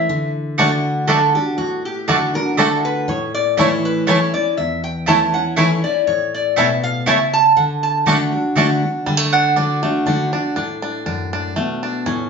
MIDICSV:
0, 0, Header, 1, 5, 480
1, 0, Start_track
1, 0, Key_signature, 2, "major"
1, 0, Tempo, 498753
1, 83, Time_signature, 3, 2, 24, 8
1, 11834, End_track
2, 0, Start_track
2, 0, Title_t, "Resonator guitar played with a steel bar"
2, 0, Program_c, 0, 25
2, 0, Note_on_c, 0, 76, 101
2, 301, Note_off_c, 0, 76, 0
2, 1034, Note_on_c, 0, 69, 89
2, 1285, Note_off_c, 0, 69, 0
2, 1300, Note_on_c, 0, 67, 81
2, 1514, Note_off_c, 0, 67, 0
2, 1518, Note_on_c, 0, 66, 81
2, 1767, Note_off_c, 0, 66, 0
2, 1783, Note_on_c, 0, 67, 83
2, 1999, Note_off_c, 0, 67, 0
2, 2000, Note_on_c, 0, 69, 75
2, 2248, Note_off_c, 0, 69, 0
2, 2262, Note_on_c, 0, 70, 97
2, 2478, Note_off_c, 0, 70, 0
2, 2487, Note_on_c, 0, 69, 78
2, 2732, Note_off_c, 0, 69, 0
2, 2741, Note_on_c, 0, 71, 95
2, 2958, Note_off_c, 0, 71, 0
2, 2971, Note_on_c, 0, 73, 83
2, 3214, Note_off_c, 0, 73, 0
2, 3219, Note_on_c, 0, 74, 96
2, 3437, Note_off_c, 0, 74, 0
2, 3440, Note_on_c, 0, 73, 93
2, 3689, Note_off_c, 0, 73, 0
2, 3706, Note_on_c, 0, 71, 88
2, 3919, Note_on_c, 0, 73, 84
2, 3921, Note_off_c, 0, 71, 0
2, 4168, Note_off_c, 0, 73, 0
2, 4174, Note_on_c, 0, 74, 93
2, 4395, Note_off_c, 0, 74, 0
2, 4401, Note_on_c, 0, 76, 80
2, 4650, Note_off_c, 0, 76, 0
2, 4654, Note_on_c, 0, 79, 91
2, 4875, Note_off_c, 0, 79, 0
2, 4883, Note_on_c, 0, 81, 106
2, 5131, Note_off_c, 0, 81, 0
2, 5137, Note_on_c, 0, 78, 87
2, 5352, Note_off_c, 0, 78, 0
2, 5356, Note_on_c, 0, 76, 84
2, 5607, Note_off_c, 0, 76, 0
2, 5619, Note_on_c, 0, 74, 89
2, 5838, Note_off_c, 0, 74, 0
2, 5844, Note_on_c, 0, 73, 80
2, 6091, Note_off_c, 0, 73, 0
2, 6106, Note_on_c, 0, 74, 90
2, 6321, Note_off_c, 0, 74, 0
2, 6327, Note_on_c, 0, 76, 93
2, 6573, Note_off_c, 0, 76, 0
2, 6578, Note_on_c, 0, 77, 111
2, 6798, Note_off_c, 0, 77, 0
2, 6807, Note_on_c, 0, 76, 91
2, 7053, Note_off_c, 0, 76, 0
2, 7059, Note_on_c, 0, 81, 118
2, 7278, Note_off_c, 0, 81, 0
2, 7281, Note_on_c, 0, 78, 75
2, 7531, Note_off_c, 0, 78, 0
2, 7535, Note_on_c, 0, 81, 95
2, 7672, Note_off_c, 0, 81, 0
2, 11834, End_track
3, 0, Start_track
3, 0, Title_t, "Mandolin"
3, 0, Program_c, 1, 25
3, 556, Note_on_c, 1, 57, 89
3, 560, Note_on_c, 1, 66, 90
3, 565, Note_on_c, 1, 74, 84
3, 567, Note_on_c, 1, 81, 96
3, 652, Note_off_c, 1, 57, 0
3, 654, Note_off_c, 1, 66, 0
3, 656, Note_off_c, 1, 74, 0
3, 657, Note_off_c, 1, 81, 0
3, 1035, Note_on_c, 1, 57, 98
3, 1038, Note_on_c, 1, 66, 96
3, 1044, Note_on_c, 1, 74, 91
3, 1046, Note_on_c, 1, 81, 90
3, 1131, Note_off_c, 1, 57, 0
3, 1133, Note_off_c, 1, 66, 0
3, 1136, Note_off_c, 1, 74, 0
3, 1136, Note_off_c, 1, 81, 0
3, 2000, Note_on_c, 1, 57, 86
3, 2003, Note_on_c, 1, 66, 87
3, 2006, Note_on_c, 1, 74, 96
3, 2011, Note_on_c, 1, 81, 88
3, 2093, Note_off_c, 1, 57, 0
3, 2095, Note_off_c, 1, 66, 0
3, 2097, Note_off_c, 1, 74, 0
3, 2099, Note_off_c, 1, 81, 0
3, 2476, Note_on_c, 1, 57, 83
3, 2480, Note_on_c, 1, 66, 92
3, 2485, Note_on_c, 1, 74, 84
3, 2488, Note_on_c, 1, 81, 94
3, 2572, Note_off_c, 1, 57, 0
3, 2574, Note_off_c, 1, 66, 0
3, 2576, Note_off_c, 1, 74, 0
3, 2578, Note_off_c, 1, 81, 0
3, 3439, Note_on_c, 1, 57, 83
3, 3443, Note_on_c, 1, 64, 77
3, 3444, Note_on_c, 1, 73, 84
3, 3449, Note_on_c, 1, 81, 82
3, 3533, Note_off_c, 1, 57, 0
3, 3536, Note_off_c, 1, 64, 0
3, 3536, Note_off_c, 1, 73, 0
3, 3538, Note_off_c, 1, 81, 0
3, 3916, Note_on_c, 1, 57, 82
3, 3920, Note_on_c, 1, 64, 80
3, 3923, Note_on_c, 1, 73, 84
3, 3925, Note_on_c, 1, 81, 94
3, 4012, Note_off_c, 1, 57, 0
3, 4014, Note_off_c, 1, 64, 0
3, 4015, Note_off_c, 1, 73, 0
3, 4017, Note_off_c, 1, 81, 0
3, 4873, Note_on_c, 1, 57, 89
3, 4879, Note_on_c, 1, 64, 85
3, 4881, Note_on_c, 1, 73, 77
3, 4884, Note_on_c, 1, 81, 85
3, 4971, Note_off_c, 1, 57, 0
3, 4974, Note_off_c, 1, 64, 0
3, 4975, Note_off_c, 1, 73, 0
3, 4976, Note_off_c, 1, 81, 0
3, 5354, Note_on_c, 1, 57, 82
3, 5358, Note_on_c, 1, 64, 95
3, 5362, Note_on_c, 1, 73, 93
3, 5366, Note_on_c, 1, 81, 97
3, 5452, Note_off_c, 1, 57, 0
3, 5454, Note_off_c, 1, 64, 0
3, 5456, Note_off_c, 1, 73, 0
3, 5458, Note_off_c, 1, 81, 0
3, 6316, Note_on_c, 1, 57, 88
3, 6319, Note_on_c, 1, 64, 86
3, 6323, Note_on_c, 1, 73, 95
3, 6325, Note_on_c, 1, 81, 98
3, 6413, Note_off_c, 1, 57, 0
3, 6414, Note_off_c, 1, 64, 0
3, 6416, Note_off_c, 1, 73, 0
3, 6417, Note_off_c, 1, 81, 0
3, 6796, Note_on_c, 1, 57, 88
3, 6798, Note_on_c, 1, 64, 87
3, 6804, Note_on_c, 1, 73, 99
3, 6806, Note_on_c, 1, 81, 110
3, 6893, Note_off_c, 1, 57, 0
3, 6894, Note_off_c, 1, 64, 0
3, 6897, Note_off_c, 1, 73, 0
3, 6898, Note_off_c, 1, 81, 0
3, 7758, Note_on_c, 1, 57, 77
3, 7761, Note_on_c, 1, 66, 84
3, 7765, Note_on_c, 1, 74, 89
3, 7767, Note_on_c, 1, 81, 93
3, 7855, Note_off_c, 1, 57, 0
3, 7856, Note_off_c, 1, 66, 0
3, 7858, Note_off_c, 1, 74, 0
3, 7859, Note_off_c, 1, 81, 0
3, 8234, Note_on_c, 1, 57, 74
3, 8239, Note_on_c, 1, 66, 77
3, 8243, Note_on_c, 1, 74, 92
3, 8246, Note_on_c, 1, 81, 97
3, 8332, Note_off_c, 1, 57, 0
3, 8335, Note_off_c, 1, 66, 0
3, 8337, Note_off_c, 1, 74, 0
3, 8339, Note_off_c, 1, 81, 0
3, 8976, Note_on_c, 1, 78, 83
3, 9197, Note_off_c, 1, 78, 0
3, 9202, Note_on_c, 1, 74, 64
3, 9901, Note_off_c, 1, 74, 0
3, 11834, End_track
4, 0, Start_track
4, 0, Title_t, "Five-string banjo"
4, 0, Program_c, 2, 105
4, 568, Note_on_c, 2, 57, 62
4, 573, Note_on_c, 2, 62, 67
4, 574, Note_off_c, 2, 62, 0
4, 574, Note_on_c, 2, 62, 64
4, 678, Note_off_c, 2, 57, 0
4, 681, Note_off_c, 2, 62, 0
4, 1048, Note_on_c, 2, 57, 63
4, 1053, Note_on_c, 2, 62, 66
4, 1056, Note_off_c, 2, 62, 0
4, 1056, Note_on_c, 2, 62, 67
4, 1158, Note_off_c, 2, 57, 0
4, 1161, Note_off_c, 2, 62, 0
4, 2008, Note_on_c, 2, 57, 59
4, 2015, Note_on_c, 2, 62, 62
4, 2035, Note_off_c, 2, 62, 0
4, 2118, Note_off_c, 2, 57, 0
4, 2492, Note_on_c, 2, 57, 65
4, 2497, Note_on_c, 2, 62, 65
4, 2498, Note_off_c, 2, 62, 0
4, 2498, Note_on_c, 2, 62, 60
4, 2600, Note_off_c, 2, 57, 0
4, 2602, Note_off_c, 2, 62, 0
4, 3453, Note_on_c, 2, 57, 63
4, 3459, Note_on_c, 2, 61, 66
4, 3460, Note_on_c, 2, 64, 63
4, 3561, Note_off_c, 2, 57, 0
4, 3562, Note_off_c, 2, 61, 0
4, 3564, Note_off_c, 2, 64, 0
4, 3933, Note_on_c, 2, 57, 62
4, 3938, Note_on_c, 2, 64, 59
4, 3939, Note_on_c, 2, 61, 64
4, 4041, Note_off_c, 2, 57, 0
4, 4042, Note_off_c, 2, 61, 0
4, 4043, Note_off_c, 2, 64, 0
4, 4890, Note_on_c, 2, 57, 62
4, 4894, Note_on_c, 2, 61, 63
4, 4896, Note_on_c, 2, 64, 62
4, 4999, Note_off_c, 2, 57, 0
4, 5000, Note_off_c, 2, 61, 0
4, 5002, Note_off_c, 2, 64, 0
4, 5368, Note_on_c, 2, 57, 63
4, 5375, Note_on_c, 2, 61, 67
4, 5375, Note_on_c, 2, 64, 68
4, 5478, Note_off_c, 2, 57, 0
4, 5480, Note_off_c, 2, 61, 0
4, 5482, Note_off_c, 2, 64, 0
4, 6328, Note_on_c, 2, 57, 58
4, 6332, Note_on_c, 2, 61, 60
4, 6335, Note_on_c, 2, 64, 62
4, 6439, Note_off_c, 2, 57, 0
4, 6441, Note_off_c, 2, 61, 0
4, 6441, Note_off_c, 2, 64, 0
4, 6807, Note_on_c, 2, 57, 63
4, 6814, Note_on_c, 2, 61, 66
4, 6819, Note_on_c, 2, 64, 64
4, 6919, Note_off_c, 2, 57, 0
4, 6921, Note_off_c, 2, 61, 0
4, 6921, Note_off_c, 2, 64, 0
4, 7774, Note_on_c, 2, 57, 63
4, 7778, Note_on_c, 2, 62, 59
4, 7782, Note_off_c, 2, 62, 0
4, 7782, Note_on_c, 2, 62, 62
4, 7882, Note_off_c, 2, 57, 0
4, 7886, Note_off_c, 2, 62, 0
4, 8252, Note_on_c, 2, 57, 67
4, 8257, Note_on_c, 2, 62, 58
4, 8258, Note_off_c, 2, 62, 0
4, 8258, Note_on_c, 2, 62, 63
4, 8362, Note_off_c, 2, 57, 0
4, 8364, Note_off_c, 2, 62, 0
4, 8723, Note_on_c, 2, 55, 74
4, 8826, Note_off_c, 2, 55, 0
4, 8826, Note_on_c, 2, 57, 81
4, 8981, Note_on_c, 2, 62, 67
4, 9196, Note_off_c, 2, 62, 0
4, 9205, Note_off_c, 2, 57, 0
4, 9208, Note_on_c, 2, 62, 58
4, 9459, Note_on_c, 2, 57, 67
4, 9675, Note_off_c, 2, 62, 0
4, 9687, Note_on_c, 2, 62, 63
4, 9929, Note_off_c, 2, 62, 0
4, 9941, Note_on_c, 2, 62, 61
4, 10153, Note_off_c, 2, 62, 0
4, 10164, Note_on_c, 2, 62, 65
4, 10405, Note_off_c, 2, 62, 0
4, 10417, Note_on_c, 2, 62, 65
4, 10633, Note_off_c, 2, 62, 0
4, 10645, Note_on_c, 2, 62, 58
4, 10806, Note_off_c, 2, 57, 0
4, 10893, Note_off_c, 2, 62, 0
4, 10905, Note_on_c, 2, 62, 63
4, 11127, Note_on_c, 2, 57, 64
4, 11373, Note_off_c, 2, 62, 0
4, 11385, Note_on_c, 2, 62, 59
4, 11608, Note_off_c, 2, 62, 0
4, 11609, Note_on_c, 2, 61, 61
4, 11834, Note_off_c, 2, 57, 0
4, 11834, Note_off_c, 2, 61, 0
4, 11834, End_track
5, 0, Start_track
5, 0, Title_t, "Steel-string acoustic guitar"
5, 0, Program_c, 3, 25
5, 90, Note_on_c, 3, 50, 94
5, 550, Note_off_c, 3, 50, 0
5, 562, Note_on_c, 3, 50, 99
5, 569, Note_on_c, 3, 57, 100
5, 578, Note_on_c, 3, 62, 97
5, 579, Note_on_c, 3, 66, 106
5, 1019, Note_off_c, 3, 50, 0
5, 1023, Note_off_c, 3, 57, 0
5, 1028, Note_off_c, 3, 62, 0
5, 1028, Note_off_c, 3, 66, 0
5, 1033, Note_on_c, 3, 50, 79
5, 1042, Note_on_c, 3, 57, 96
5, 1052, Note_on_c, 3, 62, 86
5, 1058, Note_on_c, 3, 66, 102
5, 1282, Note_off_c, 3, 50, 0
5, 1284, Note_off_c, 3, 66, 0
5, 1286, Note_off_c, 3, 57, 0
5, 1292, Note_off_c, 3, 62, 0
5, 1295, Note_on_c, 3, 66, 61
5, 1315, Note_on_c, 3, 62, 50
5, 1512, Note_off_c, 3, 66, 0
5, 1521, Note_on_c, 3, 45, 88
5, 1522, Note_off_c, 3, 62, 0
5, 1998, Note_on_c, 3, 50, 88
5, 2007, Note_on_c, 3, 57, 90
5, 2012, Note_on_c, 3, 62, 103
5, 2018, Note_on_c, 3, 66, 102
5, 2237, Note_off_c, 3, 66, 0
5, 2245, Note_off_c, 3, 50, 0
5, 2249, Note_off_c, 3, 57, 0
5, 2249, Note_on_c, 3, 66, 58
5, 2251, Note_off_c, 3, 62, 0
5, 2272, Note_on_c, 3, 62, 50
5, 2437, Note_off_c, 3, 45, 0
5, 2469, Note_off_c, 3, 66, 0
5, 2477, Note_on_c, 3, 50, 77
5, 2481, Note_off_c, 3, 62, 0
5, 2484, Note_on_c, 3, 57, 98
5, 2492, Note_on_c, 3, 62, 82
5, 2498, Note_on_c, 3, 66, 84
5, 2937, Note_off_c, 3, 50, 0
5, 2941, Note_off_c, 3, 57, 0
5, 2945, Note_off_c, 3, 62, 0
5, 2948, Note_off_c, 3, 66, 0
5, 2964, Note_on_c, 3, 45, 89
5, 3439, Note_on_c, 3, 52, 91
5, 3449, Note_on_c, 3, 57, 93
5, 3455, Note_on_c, 3, 61, 91
5, 3461, Note_on_c, 3, 64, 105
5, 3879, Note_off_c, 3, 45, 0
5, 3899, Note_off_c, 3, 52, 0
5, 3904, Note_off_c, 3, 57, 0
5, 3906, Note_off_c, 3, 61, 0
5, 3910, Note_off_c, 3, 64, 0
5, 3919, Note_on_c, 3, 52, 86
5, 3929, Note_on_c, 3, 57, 87
5, 3934, Note_on_c, 3, 61, 84
5, 3940, Note_on_c, 3, 64, 91
5, 4157, Note_off_c, 3, 64, 0
5, 4166, Note_off_c, 3, 52, 0
5, 4168, Note_on_c, 3, 64, 53
5, 4171, Note_off_c, 3, 57, 0
5, 4173, Note_off_c, 3, 61, 0
5, 4191, Note_on_c, 3, 61, 48
5, 4390, Note_off_c, 3, 64, 0
5, 4401, Note_off_c, 3, 61, 0
5, 4406, Note_on_c, 3, 40, 88
5, 4876, Note_on_c, 3, 52, 84
5, 4888, Note_on_c, 3, 57, 94
5, 4894, Note_on_c, 3, 61, 106
5, 4900, Note_on_c, 3, 64, 88
5, 5119, Note_off_c, 3, 64, 0
5, 5125, Note_off_c, 3, 52, 0
5, 5131, Note_off_c, 3, 57, 0
5, 5131, Note_on_c, 3, 64, 53
5, 5133, Note_off_c, 3, 61, 0
5, 5153, Note_on_c, 3, 61, 46
5, 5320, Note_off_c, 3, 40, 0
5, 5351, Note_off_c, 3, 64, 0
5, 5362, Note_off_c, 3, 61, 0
5, 5362, Note_on_c, 3, 52, 85
5, 5367, Note_on_c, 3, 57, 86
5, 5374, Note_on_c, 3, 61, 98
5, 5378, Note_on_c, 3, 64, 97
5, 5604, Note_off_c, 3, 64, 0
5, 5608, Note_off_c, 3, 52, 0
5, 5610, Note_off_c, 3, 57, 0
5, 5614, Note_off_c, 3, 61, 0
5, 5616, Note_on_c, 3, 64, 56
5, 5638, Note_on_c, 3, 61, 51
5, 5834, Note_off_c, 3, 64, 0
5, 5845, Note_off_c, 3, 61, 0
5, 5845, Note_on_c, 3, 45, 91
5, 6323, Note_on_c, 3, 47, 96
5, 6760, Note_off_c, 3, 45, 0
5, 6782, Note_off_c, 3, 47, 0
5, 6799, Note_on_c, 3, 49, 89
5, 7260, Note_off_c, 3, 49, 0
5, 7281, Note_on_c, 3, 50, 87
5, 7743, Note_off_c, 3, 50, 0
5, 7754, Note_on_c, 3, 50, 88
5, 7764, Note_on_c, 3, 57, 96
5, 7771, Note_on_c, 3, 62, 87
5, 7779, Note_on_c, 3, 66, 89
5, 7998, Note_off_c, 3, 66, 0
5, 8005, Note_off_c, 3, 50, 0
5, 8009, Note_off_c, 3, 57, 0
5, 8010, Note_on_c, 3, 66, 58
5, 8013, Note_off_c, 3, 62, 0
5, 8031, Note_on_c, 3, 62, 49
5, 8231, Note_off_c, 3, 66, 0
5, 8237, Note_on_c, 3, 50, 77
5, 8239, Note_off_c, 3, 62, 0
5, 8244, Note_on_c, 3, 57, 88
5, 8250, Note_on_c, 3, 62, 88
5, 8257, Note_on_c, 3, 66, 101
5, 8483, Note_off_c, 3, 66, 0
5, 8486, Note_off_c, 3, 50, 0
5, 8490, Note_off_c, 3, 57, 0
5, 8493, Note_off_c, 3, 62, 0
5, 8494, Note_on_c, 3, 66, 60
5, 8514, Note_on_c, 3, 62, 46
5, 8714, Note_off_c, 3, 66, 0
5, 8724, Note_off_c, 3, 62, 0
5, 8727, Note_on_c, 3, 50, 90
5, 9193, Note_off_c, 3, 50, 0
5, 9204, Note_on_c, 3, 50, 90
5, 9209, Note_on_c, 3, 57, 92
5, 9218, Note_on_c, 3, 62, 98
5, 9225, Note_on_c, 3, 66, 101
5, 9445, Note_off_c, 3, 66, 0
5, 9450, Note_off_c, 3, 50, 0
5, 9453, Note_off_c, 3, 57, 0
5, 9456, Note_on_c, 3, 66, 66
5, 9457, Note_off_c, 3, 62, 0
5, 9478, Note_on_c, 3, 62, 51
5, 9675, Note_off_c, 3, 66, 0
5, 9680, Note_on_c, 3, 50, 84
5, 9683, Note_off_c, 3, 62, 0
5, 9691, Note_on_c, 3, 57, 87
5, 9695, Note_on_c, 3, 62, 98
5, 9700, Note_on_c, 3, 66, 93
5, 9923, Note_off_c, 3, 66, 0
5, 9928, Note_off_c, 3, 50, 0
5, 9933, Note_off_c, 3, 57, 0
5, 9935, Note_off_c, 3, 62, 0
5, 9935, Note_on_c, 3, 66, 59
5, 9957, Note_on_c, 3, 62, 55
5, 10154, Note_off_c, 3, 66, 0
5, 10166, Note_off_c, 3, 62, 0
5, 10170, Note_on_c, 3, 45, 88
5, 10646, Note_on_c, 3, 42, 91
5, 11083, Note_off_c, 3, 45, 0
5, 11104, Note_off_c, 3, 42, 0
5, 11127, Note_on_c, 3, 47, 89
5, 11585, Note_off_c, 3, 47, 0
5, 11606, Note_on_c, 3, 45, 95
5, 11834, Note_off_c, 3, 45, 0
5, 11834, End_track
0, 0, End_of_file